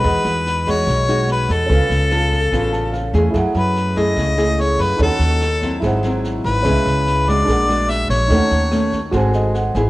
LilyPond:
<<
  \new Staff \with { instrumentName = "Grand piano" } { \time 4/4 \key cis \minor \tempo 4 = 145 << { r1 | r2 r8 a''8 eis''4 | r1 | r1 |
r1 | r2 r8 dis''8 fis''8 gis''8 | } \\ { <gis' dis'' fis''>1 | <cis' a' b' eis''>1 | <e' gis' fis''>1 | <dis' a' cis'' fis''>2 <e' gis' bis' fis''>2 |
<cis' gis' b' e''>2 <d' gis' ais' fis''>2 | <dis' a' cis'' fis''>2 <fis' a' bis' gis''>2 | } >> }
  \new Staff \with { instrumentName = "Harmonica" } { \time 4/4 \key cis \minor b'4. cis''4. b'8 a'8~ | a'2.~ a'8 r8 | r8 b'4 dis''4. cis''8 b'8 | a'2 r4. b'8~ |
b'4. d''4. e''8 cis''8~ | cis''2 r2 | }
  \new Staff \with { instrumentName = "Nylon-string guitar" } { \time 4/4 \key cis \minor << { <gis dis' fis'>4. <gis dis' fis'>4 <gis dis' fis'>4. | <b eis' a'>4 <b eis' a'>8 r8 <b eis' a'>4 r8 <a e' gis'>8~ | <a e' gis'>4. <a e' gis'>4 <a e' gis'>4. | <cis' fis' a'>4 r8 <fis bis e'>4 <fis bis e'>4. |
<gis b e'>4. <gis d' fis'>4 <gis d' fis'>4. | <a cis' fis'>4 <a cis' fis'>8 r8 <bis fis' a'>4 r8 <b e' gis'>8 | } \\ { e2 b,2 | cis2 cis2 | fis2 cis2 | dis2 gis,2 |
cis2 ais,2 | dis2 gis2 | } >> }
  \new Staff \with { instrumentName = "Upright bass" } { \clef bass \time 4/4 \key cis \minor e,16 r16 e,4. b,,4. e,8 | cis,16 r16 cis,4. a,,4. e,8 | fis,16 r16 fis,4. cis,4. fis,8 | dis,16 r16 dis,4. gis,,4. gis,,8 |
cis,16 r16 cis,4. ais,,4. ais,,8 | dis,16 r16 dis,4. gis,,4. gis,,8 | }
  \new DrumStaff \with { instrumentName = "Drums" } \drummode { \time 4/4 <bd ss sn>8 sn8 sn8 <bd sn>8 <bd ss sn>8 sn8 sn8 <bd ss sn>8 | <bd sn>8 sn8 <ss sn>8 <bd sn>8 <bd ss sn>8 sn8 sn8 <bd sn>8 | <bd ss sn>8 sn8 sn8 <bd sn>8 <bd ss sn>8 sn8 sn8 <bd ss sn>8 | <bd sn>8 sn8 <ss sn>8 <bd sn>8 <bd ss sn>8 sn8 sn8 <bd sn>8 |
<bd ss sn>8 sn8 sn8 <bd sn>8 <bd ss sn>8 sn8 sn8 <bd ss sn>8 | <bd sn>8 sn8 <ss sn>8 <bd sn>8 <bd ss sn>8 sn8 sn8 <bd sn>8 | }
>>